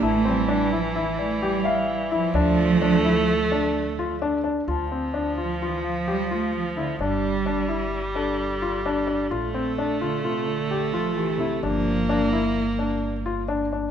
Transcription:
X:1
M:5/4
L:1/8
Q:1/4=129
K:Dm
V:1 name="Celesta"
[ab]4- [ab] d2 e3- | e z8 z | a4- a f4- f | z4 z A4- A |
z8 G2- | G z8 z |]
V:2 name="Grand piano"
E C D E E2 G f2 E | D2 D E2 D2 F D D | F C D F F2 G F2 E | D2 D E2 D2 F D D |
F C D F F2 G F2 E | D2 D E2 D2 F D D |]
V:3 name="Viola" clef=bass
E,8- E,2 | A,8- A, z | F,8- F,2 | G,8- G,2 |
A,8- A,2 | B,8- B, z |]
V:4 name="Cello" clef=bass
A, G,2 F, E, A, G,2 z F,- | F,8 z2 | z3 F, E, F, G, A, F, D, | G,4 z6 |
z3 D, C, D,2 F, E, C, | F,4 z6 |]
V:5 name="Upright bass" clef=bass
A,,,8- A,,,2 | D,,8- D,,2 | D,,8- D,,2 | G,,,8- G,,,2 |
B,,,8- B,,,2 | G,,,8- G,,,2 |]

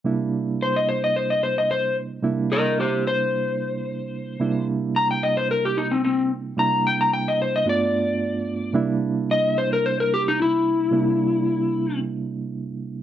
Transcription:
X:1
M:4/4
L:1/16
Q:1/4=110
K:Cmix
V:1 name="Electric slide guitar"
z4 c _e c e c e c e c2 z2 | z2 [B_e]2 [Gc]2 c8- c2- | c2 z2 b g _e c B G _E C C2 z2 | b2 g b g _e c e d8 |
z4 _e2 c B c B G _E =E4- | E8 z8 |]
V:2 name="Reed electric piano"
[C,G,B,DE]16 | [C,G,B,DE]16 | [C,G,B,DE]16 | [C,G,B,DE]8 [G,,A,=B,DF]8 |
[C,G,B,DE]16 | [C,G,B,DE]16 |]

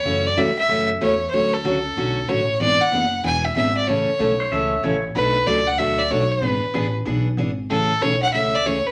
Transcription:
X:1
M:4/4
L:1/16
Q:"Swing" 1/4=188
K:A
V:1 name="Fiddle"
c2 d2 e2 e4 z2 c3- c/2 =c/2 | c2 A8- A2 c4 | d2 f6 g2 e2 e2 d2 | c12 z4 |
B4 d2 f2 e2 d2 c2 B2- | B6 z8 z2 | A4 c2 f2 e2 d2 c2 B2 |]
V:2 name="Electric slide guitar"
z16 | z16 | z16 | z6 =c2 e4 ^c2 z2 |
z16 | z16 | z16 |]
V:3 name="Steel-string acoustic guitar"
[C,E,A,CF]2 z2 [C,E,A,CF]2 z2 [C,E,A,CF]2 z2 [C,E,A,CF]2 z2 | [D,F,A,CF]2 z2 [D,F,A,CF]2 z2 [D,F,A,CF]2 z2 [D,F,A,CF]2 z2 | [E,B,DG]2 z2 [E,B,DG]2 z2 [E,B,DG]2 z2 [E,B,DG]2 z2 | [C,E,A,CA]2 z2 [C,E,A,CA]2 z2 [C,E,A,CA]2 z2 [C,E,A,CA]2 z2 |
[B,,F,A,DF]2 z2 [B,,F,A,DF]2 z2 [B,,F,A,DF]2 z2 [B,,F,A,DF]2 z2 | [E,B,DG]2 z2 [E,B,DG]2 z2 [E,B,DG]2 z2 [E,B,DG]2 z2 | [C,E,A,CG]2 z2 [C,E,A,CG]2 z2 [C,E,A,CG]2 z2 [C,E,A,CG]2 z2 |]
V:4 name="Upright bass" clef=bass
F,,4 =G,,4 F,,4 E,,4 | D,,4 C,,4 B,,,4 A,,,4 | G,,,2 z2 F,,,4 E,,,4 G,,,4 | A,,,2 z2 B,,,4 C,,4 A,,,4 |
B,,,4 C,,4 D,,4 B,,,4 | G,,,2 z2 A,,,4 B,,,4 G,,,4 | A,,,4 B,,,4 C,,4 D,,2 z2 |]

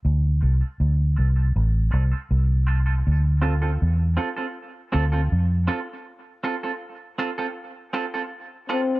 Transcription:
X:1
M:4/4
L:1/16
Q:1/4=80
K:Dm
V:1 name="Clean electric guitar"
z2 [CFA] [CFA] z2 [CFA] [CFA] z2 [CFA] [CFA] z2 [CFA] [CFA] | z2 [CFA] [CFA] z2 [CFA] [CFA] z2 [CFA] [CFA] z2 [CFA] z | z2 [CFA] [CFA] z2 [CFA] [CFA] z2 [CFA] [CFA] z2 [CFA] z |]
V:2 name="Trombone"
z16 | z16 | z12 z2 C2 |]
V:3 name="Fingered electric bass" clef=bass
D,,2 C,, z D,,2 C,,2 A,,,2 C,, z C,,4 | D,,4 E,,2 z4 D,,2 F,,2 z2 | z16 |]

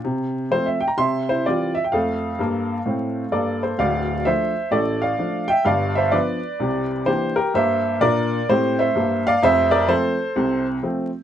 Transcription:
X:1
M:4/4
L:1/16
Q:"Swing" 1/4=128
K:F
V:1 name="Upright piano"
z4 c e g b [ec']2 [Ec]2 [Fd]2 e g | [Af]12 [Ad]2 [Ac]2 | [df]4 [ce]4 [Ad]2 [df]4 [eg]2 | [df]2 [ce]2 [=Bd]6 z2 [Gc]2 [G_B]2 |
[ce]4 [Bd]4 [Gc]2 [ce]4 [df]2 | [ce]2 [Bd]2 [Ac]6 z6 |]
V:2 name="Upright piano" clef=bass
C,4 [F,A,C]4 C,4 [E,G,C]4 | [F,,A,]4 [G,,B,]4 [A,,C]4 [G,,B,]4 | [D,,,D,,]4 [F,A,D]4 [A,,,A,,]4 [F,A,D]4 | [G,,,G,,]4 [F,=B,D]4 [C,,C,]4 [E,_B,D]4 |
[G,,B,]4 [B,,D]4 [A,,C]4 [G,,B,]4 | [F,,,F,,]4 [F,A,C]4 [C,,C,]4 [F,A,C]4 |]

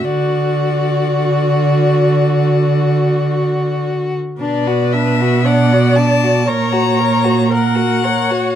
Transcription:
X:1
M:4/4
L:1/16
Q:1/4=56
K:D
V:1 name="Violin"
d12- d2 z2 | [K:F#phr] d2 e2 f2 a2 ^a4 f4 |]
V:2 name="Viola"
F12- F2 z2 | [K:F#phr] B4 d4 c4 ^A2 c2 |]
V:3 name="Violin"
F12- F3 z | [K:F#phr] D F D F D F D F ^A F A F A F A F |]
V:4 name="Cello" clef=bass
D,16 | [K:F#phr] B,,8 ^A,,8 |]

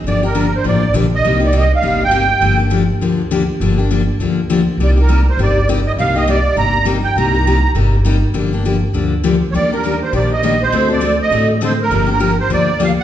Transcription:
X:1
M:4/4
L:1/16
Q:"Swing" 1/4=202
K:Gm
V:1 name="Accordion"
d2 B4 c2 d4 z2 e2- | e2 d2 e2 f4 g6- | g2 z12 z2 | z16 |
d2 B4 c2 d4 z2 e2 | f2 e2 d4 b4 z2 g2 | b8 z8 | z12 z3 z/2 ^c/2 |
d2 B4 c2 d2 e4 c2- | c2 d4 e4 z2 c2 B2- | B2 B4 c2 d4 f2 ^f2 |]
V:2 name="Steel-string acoustic guitar"
[D,F,B,DG]2 [B,DG]2 [D,F,B,DG]2 z2 [D,F,B,DG]2 z2 [D,F,B,DG]2 z2 | [C,G,B,EG]2 [B,EG]2 [C,G,B,EG]2 z2 [C,G,B,EG]2 z2 [C,G,B,EG]2 z2 | [D,F,B,DG]2 [B,DG]2 [D,F,B,DG]2 z2 [D,F,B,DG]2 z2 [D,F,B,DG]2 z2 | [D,F,B,DG]2 [B,DG]2 [D,F,B,DG]2 z2 [D,F,B,DG]2 z2 [D,F,B,DG]2 z2 |
[C,G,B,EG]2 [B,EG]2 [C,G,B,EG]2 z2 [C,G,B,EG]2 z2 [C,G,B,EG]2 z2 | [C,G,B,EG]2 [B,EG]2 [C,G,B,EG]2 z2 [C,G,B,EG]2 z2 [C,G,B,EG]2 z2 | [C,G,B,EG]2 [B,EG]2 [C,G,B,EG]2 z2 [C,G,B,EG]2 z2 [C,G,B,EG]2 z2 | [D,F,B,DG]2 [B,DG]2 [D,F,B,DG]2 z2 [D,F,B,DG]2 z2 [D,F,B,DG]2 z2 |
[E,G,B,DG]2 [B,DG]2 [E,G,B,DG]2 z2 [E,G,B,DG]2 z2 [E,G,B,DG]2 z2 | [D,A,C^FA]2 [CFA]2 [D,A,CFA]2 z2 [D,A,CFA]2 z2 [D,A,CFA]2 z2 | [D,F,B,DG]2 [B,DG]2 [D,F,B,DG]2 z2 [D,F,B,DG]2 z2 [D,F,B,DG]2 z2 |]
V:3 name="Upright bass" clef=bass
G,,,8 A,,,4 B,,,4 | C,,8 G,,,8 | G,,,8 D,,8 | G,,,8 D,,8 |
C,,8 G,,,8 | C,,8 G,,,8 | C,,8 G,,,8 | G,,,8 D,,8 |
E,,8 B,,,8 | D,,8 A,,,8 | G,,,8 D,,8 |]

